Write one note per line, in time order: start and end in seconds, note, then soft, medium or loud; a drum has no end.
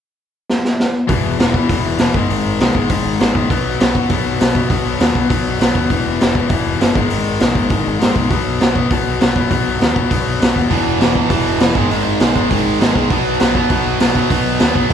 0.50 snare medium
0.65 snare medium
0.80 snare medium
1.07 1.19 E1 medium
1.07 1.37 E2 medium
1.07 1.38 B2 medium
1.07 1.38 E3 medium
1.07 kick loud
1.07 open hi-hat soft
1.26 1.35 E1 medium
1.39 1.59 E1 medium
1.39 1.54 E2 medium
1.39 1.53 B2 medium
1.39 1.53 E3 medium
1.39 snare loud
1.39 open hi-hat medium
1.54 1.69 E2 medium
1.54 1.69 B2 medium
1.54 1.69 E3 medium
1.54 kick medium
1.69 1.79 E1 medium
1.69 1.99 E2 medium
1.69 1.99 B2 medium
1.69 2.00 E3 loud
1.69 kick medium
1.69 open hi-hat medium
1.85 1.95 E1 medium
1.98 2.09 E1 medium
1.98 2.14 E2 medium
1.98 2.14 B2 medium
1.98 2.14 E3 medium
1.98 snare medium
1.98 open hi-hat medium
2.14 2.25 G#1 medium
2.14 2.29 G#2 medium
2.14 2.29 D#3 medium
2.14 2.29 G#3 medium
2.14 kick medium
2.30 2.40 G#1 medium
2.30 2.61 G#2 medium
2.30 2.61 D#3 medium
2.30 2.60 G#3 medium
2.30 open hi-hat soft
2.45 2.55 G#1 medium
2.59 2.69 B1 medium
2.59 2.73 G#2 medium
2.59 2.75 D#3 medium
2.59 2.75 G#3 loud
2.59 snare loud
2.59 open hi-hat soft
2.75 2.85 G#1 medium
2.75 2.89 G#2 medium
2.75 2.89 D#3 medium
2.75 2.89 G#3 loud
2.75 kick medium
2.89 3.00 G#1 medium
2.89 3.20 G#2 medium
2.89 3.20 D#3 medium
2.89 3.19 G#3 medium
2.89 kick medium
2.89 open hi-hat medium
3.05 3.15 G#1 medium
3.20 3.30 G#1 medium
3.20 3.33 G#2 medium
3.20 3.34 D#3 medium
3.20 3.34 G#3 medium
3.20 snare loud
3.20 open hi-hat soft
3.35 3.45 A1 medium
3.35 3.49 G#2 medium
3.35 3.49 D#3 medium
3.35 3.49 G#3 medium
3.35 kick medium
3.50 3.60 B1 medium
3.50 3.79 B2 medium
3.50 3.81 F#3 loud
3.50 3.80 B3 loud
3.50 kick medium
3.50 open hi-hat soft
3.66 3.75 B1 medium
3.80 4.01 B1 medium
3.80 3.93 B2 medium
3.80 3.93 F#3 loud
3.80 3.93 B3 medium
3.80 snare loud
3.80 open hi-hat soft
3.94 4.08 B2 medium
3.94 4.09 F#3 medium
3.94 4.09 B3 medium
3.94 kick medium
4.09 4.20 B1 medium
4.09 4.38 B2 medium
4.09 4.38 F#3 loud
4.09 4.39 B3 medium
4.09 kick medium
4.09 open hi-hat medium
4.26 4.35 B1 medium
4.39 4.50 B1 medium
4.39 4.53 B2 medium
4.39 4.53 F#3 medium
4.39 4.53 B3 medium
4.39 snare loud
4.39 open hi-hat medium
4.53 4.68 B2 medium
4.53 4.65 B2 medium
4.53 4.68 F#3 medium
4.53 4.69 B3 medium
4.53 kick medium
4.69 4.80 B1 medium
4.69 4.99 B2 medium
4.69 5.00 F#3 medium
4.69 5.01 B3 medium
4.69 kick medium
4.69 open hi-hat medium
4.86 4.95 B1 medium
5.00 5.10 D#2 medium
5.00 5.14 B2 medium
5.00 5.14 F#3 medium
5.00 5.15 B3 medium
5.00 snare loud
5.00 open hi-hat soft
5.15 5.25 B1 medium
5.15 5.28 B2 medium
5.15 5.28 F#3 medium
5.15 5.30 B3 medium
5.15 kick medium
5.29 5.41 B1 medium
5.29 5.59 B2 medium
5.29 5.59 F#3 medium
5.29 5.61 B3 medium
5.29 kick loud
5.29 open hi-hat medium
5.46 5.55 B1 medium
5.60 5.70 B1 medium
5.60 5.75 B2 medium
5.60 5.74 F#3 medium
5.60 5.75 B3 medium
5.60 snare loud
5.60 open hi-hat soft
5.75 5.85 D#2 medium
5.75 5.89 B2 medium
5.75 5.90 F#3 medium
5.75 8.30 B3 medium
5.75 kick medium
5.90 6.00 E1 medium
5.90 6.20 E2 medium
5.90 6.20 B2 medium
5.90 6.21 E3 medium
5.90 kick medium
5.90 open hi-hat soft
6.07 6.17 E1 medium
6.21 6.41 E1 medium
6.21 6.34 E2 medium
6.21 6.34 B2 medium
6.21 6.33 E3 medium
6.21 snare loud
6.21 open hi-hat medium
6.35 6.49 E2 medium
6.35 6.49 B2 medium
6.35 6.50 E3 medium
6.35 kick medium
6.49 6.60 E1 medium
6.49 6.78 E2 medium
6.49 6.79 B2 medium
6.49 6.79 E3 loud
6.49 kick medium
6.49 open hi-hat soft
6.66 6.76 E1 medium
6.80 6.91 F#1 medium
6.80 6.94 E2 medium
6.80 6.94 B2 medium
6.80 6.95 E3 medium
6.80 snare loud
6.80 open hi-hat medium
6.94 7.06 G#1 medium
6.94 7.09 G#2 medium
6.94 7.08 D#3 medium
6.94 7.08 G#3 medium
6.94 kick medium
7.09 7.21 G#1 medium
7.09 7.39 G#2 medium
7.09 7.39 D#3 medium
7.09 7.39 G#3 loud
7.09 open hi-hat medium
7.27 7.37 G#1 medium
7.40 7.51 B1 medium
7.40 7.54 G#2 medium
7.40 7.54 D#3 medium
7.40 7.55 G#3 medium
7.40 snare loud
7.40 open hi-hat medium
7.55 7.66 G#1 medium
7.55 7.70 G#2 medium
7.55 7.70 D#3 medium
7.55 7.69 G#3 medium
7.55 kick medium
7.70 7.80 G#1 medium
7.70 8.00 G#2 medium
7.70 7.99 D#3 medium
7.70 7.99 G#3 medium
7.70 kick loud
7.70 open hi-hat medium
7.88 7.97 G#1 medium
8.00 8.11 G#1 medium
8.00 8.14 G#2 medium
8.00 8.15 D#3 medium
8.00 8.15 G#3 medium
8.00 snare loud
8.00 open hi-hat medium
8.15 8.26 B1 medium
8.15 8.30 G#2 medium
8.15 8.29 D#3 medium
8.15 8.30 G#3 medium
8.15 kick medium
8.30 8.41 B1 medium
8.30 8.60 B2 medium
8.30 8.60 F#3 medium
8.30 8.61 B3 loud
8.30 kick medium
8.30 open hi-hat soft
8.47 8.57 B1 medium
8.60 8.81 B1 medium
8.60 8.74 B2 medium
8.60 8.74 F#3 medium
8.60 8.75 B3 medium
8.60 snare loud
8.60 open hi-hat soft
8.75 8.90 B2 medium
8.75 8.89 F#3 medium
8.75 8.91 B3 medium
8.75 kick medium
8.91 9.01 B1 medium
8.91 9.20 B2 medium
8.91 9.21 F#3 medium
8.91 9.22 B3 medium
8.91 kick loud
8.91 open hi-hat soft
9.07 9.17 B1 medium
9.21 9.32 B1 medium
9.21 9.36 B2 medium
9.21 9.35 F#3 medium
9.21 9.36 B3 medium
9.21 snare loud
9.21 open hi-hat medium
9.36 9.46 B2 medium
9.36 9.48 B2 medium
9.36 9.49 F#3 medium
9.36 9.50 B3 medium
9.36 kick medium
9.50 9.61 B1 medium
9.50 9.79 B2 medium
9.50 9.79 F#3 medium
9.50 9.80 B3 loud
9.50 kick medium
9.50 open hi-hat medium
9.68 9.77 B1 medium
9.80 9.91 D#2 medium
9.80 9.94 B2 medium
9.80 9.94 F#3 medium
9.80 9.94 B3 medium
9.80 snare loud
9.80 open hi-hat soft
9.94 10.06 B1 medium
9.94 10.08 B2 medium
9.94 10.08 F#3 medium
9.94 10.10 B3 medium
9.94 kick medium
10.09 10.21 B1 medium
10.09 10.39 B2 medium
10.09 10.39 F#3 medium
10.09 10.40 B3 loud
10.09 kick medium
10.09 open hi-hat medium
10.26 10.36 B1 medium
10.40 10.51 B1 medium
10.40 10.54 B2 medium
10.40 10.53 F#3 medium
10.40 10.53 B3 medium
10.40 snare loud
10.40 open hi-hat soft
10.54 10.66 D#2 medium
10.54 10.68 B2 medium
10.54 10.69 F#3 medium
10.54 13.11 B3 medium
10.54 kick medium
10.69 10.81 E1 medium
10.69 10.98 E2 medium
10.69 10.99 B2 medium
10.69 10.99 E3 medium
10.69 kick medium
10.69 open hi-hat medium
10.87 10.96 E1 medium
11.00 11.20 E1 medium
11.00 11.14 E2 medium
11.00 11.14 B2 medium
11.00 11.13 E3 medium
11.00 snare loud
11.00 open hi-hat soft
11.15 11.29 E2 medium
11.15 11.29 B2 medium
11.15 11.29 E3 medium
11.15 kick medium
11.30 11.40 E1 medium
11.30 11.60 E2 medium
11.30 11.60 B2 medium
11.30 11.60 E3 loud
11.30 kick medium
11.30 open hi-hat medium
11.46 11.56 E1 medium
11.60 11.71 E1 medium
11.60 11.74 E2 medium
11.60 11.75 B2 medium
11.60 11.75 E3 medium
11.60 snare loud
11.60 open hi-hat medium
11.75 11.85 G#1 medium
11.75 11.91 G#2 medium
11.75 11.91 D#3 medium
11.75 11.90 G#3 medium
11.75 kick medium
11.91 12.01 G#1 medium
11.91 12.20 G#2 medium
11.91 12.20 D#3 medium
11.91 12.20 G#3 medium
11.91 open hi-hat medium
12.06 12.16 G#1 medium
12.20 12.31 B1 medium
12.20 12.34 G#2 medium
12.20 12.34 D#3 medium
12.20 12.34 G#3 medium
12.20 snare loud
12.20 open hi-hat medium
12.35 12.46 G#1 medium
12.35 12.49 G#2 medium
12.35 12.49 D#3 medium
12.35 12.48 G#3 loud
12.35 kick medium
12.49 12.61 G#1 medium
12.49 12.79 G#2 medium
12.49 12.79 D#3 medium
12.49 12.78 G#3 medium
12.49 kick medium
12.49 open hi-hat medium
12.66 12.76 G#1 medium
12.80 12.90 G#1 medium
12.80 12.92 G#2 medium
12.80 12.93 D#3 medium
12.80 12.94 G#3 medium
12.80 snare loud
12.80 open hi-hat medium
12.94 13.06 B1 medium
12.94 13.09 G#2 medium
12.94 13.09 D#3 medium
12.94 13.09 G#3 medium
12.94 kick medium
13.10 13.21 B1 medium
13.10 13.39 B2 medium
13.10 13.40 F#3 medium
13.10 13.40 B3 loud
13.10 kick medium
13.10 open hi-hat soft
13.26 13.35 B1 medium
13.39 13.61 B1 medium
13.39 13.54 B2 medium
13.39 13.54 F#3 loud
13.39 13.55 B3 loud
13.39 snare loud
13.39 open hi-hat soft
13.55 13.69 B2 medium
13.55 13.69 F#3 medium
13.55 13.70 B3 medium
13.55 kick medium
13.69 13.80 B1 medium
13.69 13.99 B2 medium
13.69 14.00 F#3 medium
13.69 14.01 B3 medium
13.69 kick medium
13.69 open hi-hat soft
13.86 13.96 B1 medium
14.00 14.10 B1 medium
14.00 14.14 B2 medium
14.00 14.14 F#3 medium
14.00 14.15 B3 medium
14.00 snare medium
14.00 open hi-hat medium
14.15 14.30 B2 medium
14.15 14.25 B2 medium
14.15 14.30 F#3 medium
14.15 14.31 B3 medium
14.15 kick medium
14.30 14.40 B1 medium
14.30 14.59 B2 medium
14.30 14.60 F#3 medium
14.30 14.61 B3 loud
14.30 kick medium
14.30 open hi-hat soft
14.46 14.55 B1 medium
14.59 14.71 D#2 medium
14.59 14.75 B2 medium
14.59 14.75 F#3 medium
14.59 14.75 B3 medium
14.59 snare loud
14.59 open hi-hat medium
14.75 14.85 B1 medium
14.75 14.89 B2 medium
14.75 14.90 F#3 medium
14.75 14.91 B3 loud
14.75 kick medium